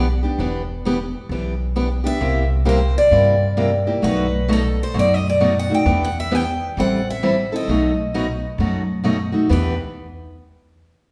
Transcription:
0.00 0.21 B1 medium
0.00 0.20 F#5 medium
0.23 0.39 B3 soft
0.23 0.39 D4 soft
0.23 0.39 G4 medium
0.39 1.12 E1 medium
0.39 0.61 E3 medium
0.39 0.62 B3 medium
0.39 0.62 D4 medium
0.39 0.62 G4 medium
0.85 0.97 E3 medium
0.85 0.97 B3 medium
0.85 0.97 D4 loud
0.85 0.97 G4 medium
1.29 2.03 B1 medium
1.29 1.53 E3 medium
1.29 1.53 B3 medium
1.29 1.53 D4 medium
1.29 1.53 G4 medium
1.76 1.87 E3 medium
1.76 1.88 B3 medium
1.76 1.88 D4 medium
1.76 1.88 G4 medium
2.04 2.20 B3 soft
2.04 2.21 D4 soft
2.04 2.20 G4 medium
2.04 2.48 E5 loud
2.21 2.94 C2 medium
2.21 2.43 C3 medium
2.21 2.43 G3 medium
2.21 2.43 A#3 medium
2.21 2.44 E4 medium
2.21 2.43 G4 medium
2.65 2.78 C3 medium
2.65 2.78 G3 loud
2.65 2.78 A#3 medium
2.65 2.78 E4 medium
2.65 2.78 G4 medium
2.65 2.98 C5 loud
2.98 3.84 D5 medium
3.11 3.85 G2 medium
3.11 3.34 C3 medium
3.11 3.34 G3 medium
3.11 3.34 A#3 medium
3.11 3.34 E4 medium
3.11 3.35 G4 medium
3.57 3.69 C3 medium
3.57 3.69 G3 medium
3.57 3.69 A#3 medium
3.57 3.70 E4 medium
3.57 3.70 G4 medium
3.87 4.02 A#3 soft
3.87 4.03 E4 soft
3.87 4.03 G4 medium
4.02 4.76 B1 medium
4.02 4.25 B2 medium
4.02 4.25 F#3 medium
4.02 4.25 A3 medium
4.02 4.25 D#4 medium
4.02 4.26 F#4 medium
4.02 4.51 B4 medium
4.48 4.61 B2 medium
4.48 4.61 F#3 medium
4.48 4.61 A3 medium
4.48 4.61 D#4 loud
4.48 4.61 F#4 loud
4.53 4.78 A4 loud
4.83 4.96 C5 medium
4.94 5.68 F#2 medium
4.94 5.16 B2 medium
4.94 5.17 F#3 medium
4.94 5.17 A3 medium
4.94 5.17 D#4 medium
4.94 5.17 F#4 medium
4.99 5.14 D5 loud
5.14 5.27 D#5 medium
5.30 5.59 D5 medium
5.40 5.52 B2 medium
5.40 5.52 F#3 medium
5.40 5.52 A3 medium
5.40 5.52 D#4 medium
5.40 5.53 F#4 medium
5.59 5.72 F#5 medium
5.70 5.85 A3 soft
5.70 5.86 D#4 soft
5.70 5.86 F#4 medium
5.74 6.01 G5 medium
5.86 6.59 E2 medium
5.86 6.08 E3 medium
5.86 6.08 B3 medium
5.86 6.08 D4 medium
5.86 6.08 G4 medium
6.04 6.19 F#5 medium
6.20 6.35 E5 medium
6.31 6.43 E3 medium
6.31 6.43 B3 medium
6.31 6.44 D4 medium
6.31 6.44 G4 loud
6.31 6.79 G5 loud
6.77 7.50 A1 medium
6.77 7.00 E3 medium
6.77 7.00 G3 medium
6.77 7.00 C4 medium
6.77 7.00 E4 medium
6.77 7.00 A4 medium
6.77 7.09 F#5 loud
7.10 7.55 E5 medium
7.23 7.35 E3 medium
7.23 7.35 G3 medium
7.23 7.35 C4 medium
7.23 7.35 E4 loud
7.23 7.35 A4 medium
7.52 7.69 C4 soft
7.52 7.69 E4 medium
7.52 7.68 A4 medium
7.52 9.03 D#5 medium
7.68 8.41 B1 medium
7.68 7.91 B2 medium
7.68 7.91 F#3 medium
7.68 7.91 A3 medium
7.68 7.91 D#4 medium
7.68 7.91 F#4 medium
8.14 8.26 B2 medium
8.14 8.26 F#3 medium
8.14 8.26 A3 medium
8.14 8.26 D#4 medium
8.14 8.26 F#4 medium
8.58 9.32 F#2 medium
8.58 8.82 B2 medium
8.58 8.82 F#3 medium
8.58 8.82 A3 medium
8.58 8.82 D#4 medium
8.58 8.82 F#4 medium
9.04 9.16 B2 medium
9.04 9.16 F#3 medium
9.04 9.17 A3 medium
9.04 9.17 D#4 medium
9.04 9.17 F#4 medium
9.32 9.50 A3 soft
9.32 9.50 D#4 soft
9.32 9.49 F#4 medium
9.49 9.77 E2 medium
9.49 9.73 E3 medium
9.49 9.74 B3 medium
9.49 9.74 D4 medium
9.49 9.74 G4 medium
9.49 9.79 B4 medium

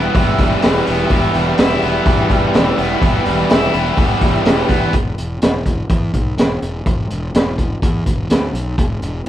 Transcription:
0.00 0.15 E3 medium
0.00 0.38 G3 medium
0.00 0.87 B3 medium
0.00 4.89 B3 medium
0.00 1.58 E4 medium
0.00 4.90 E4 medium
0.00 4.89 G4 medium
0.00 4.90 E5 medium
0.00 4.89 G5 medium
0.15 0.32 E1 medium
0.15 0.63 E3 medium
0.15 kick loud
0.15 open hi-hat medium
0.39 0.56 E1 medium
0.39 1.35 G3 medium
0.39 kick medium
0.39 open hi-hat medium
0.62 0.81 E1 medium
0.62 1.10 E3 medium
0.62 snare loud
0.62 open hi-hat medium
0.87 1.05 E1 medium
0.87 1.81 B3 medium
0.87 open hi-hat medium
1.10 1.28 E1 medium
1.10 2.05 E3 medium
1.10 kick medium
1.10 open hi-hat medium
1.34 1.52 E1 medium
1.34 2.29 G3 medium
1.34 open hi-hat medium
1.58 1.76 E1 medium
1.58 3.50 E4 medium
1.58 snare loud
1.58 open hi-hat medium
1.82 2.00 E1 medium
1.82 2.78 B3 medium
1.82 open hi-hat soft
2.06 2.23 E1 medium
2.06 2.53 E3 medium
2.06 kick loud
2.06 open hi-hat medium
2.30 2.48 E1 medium
2.30 3.25 G3 medium
2.30 kick medium
2.30 open hi-hat medium
2.54 2.72 E1 medium
2.54 3.00 E3 medium
2.54 snare loud
2.54 open hi-hat medium
2.78 2.95 E1 medium
2.78 3.73 B3 medium
2.78 open hi-hat medium
3.01 3.19 E1 loud
3.01 3.96 E3 medium
3.01 kick medium
3.01 open hi-hat medium
3.26 3.43 E1 medium
3.26 4.20 G3 medium
3.26 open hi-hat medium
3.50 3.68 E1 medium
3.50 4.70 E4 medium
3.50 snare loud
3.50 open hi-hat medium
3.74 3.92 E1 medium
3.74 4.68 B3 medium
3.74 open hi-hat medium
3.97 4.15 E1 medium
3.97 4.44 E3 medium
3.97 kick loud
3.97 open hi-hat medium
4.21 4.39 E1 medium
4.21 4.93 G3 medium
4.21 kick medium
4.21 open hi-hat medium
4.45 4.63 E1 medium
4.45 4.93 E3 medium
4.45 snare loud
4.45 open hi-hat medium
4.69 4.87 E1 medium
4.69 4.93 B3 medium
4.69 kick medium
4.69 open hi-hat medium
4.93 5.13 E1 medium
4.93 kick medium
4.93 closed hi-hat medium
5.18 5.38 E1 medium
5.18 closed hi-hat medium
5.42 5.82 E1 medium
5.42 snare loud
5.42 closed hi-hat medium
5.66 kick medium
5.66 closed hi-hat medium
5.90 6.10 E2 medium
5.90 kick loud
5.90 closed hi-hat medium
6.14 6.34 B1 medium
6.14 kick medium
6.14 closed hi-hat medium
6.38 6.58 E1 medium
6.38 snare loud
6.38 closed hi-hat medium
6.62 6.82 E1 medium
6.62 closed hi-hat medium
6.86 7.06 E1 medium
6.86 kick medium
6.86 closed hi-hat medium
7.11 7.31 E1 medium
7.11 closed hi-hat medium
7.34 7.74 E1 medium
7.34 snare loud
7.34 closed hi-hat medium
7.58 kick medium
7.58 closed hi-hat medium
7.82 8.02 E2 medium
7.82 kick medium
7.82 closed hi-hat medium
8.06 8.26 E1 medium
8.06 kick medium
8.06 closed hi-hat medium
8.30 8.50 D2 medium
8.30 snare loud
8.30 closed hi-hat medium
8.53 8.74 B1 medium
8.53 closed hi-hat medium
8.78 8.98 E1 medium
8.78 kick medium
8.78 closed hi-hat medium
9.02 9.22 E1 medium
9.02 closed hi-hat medium

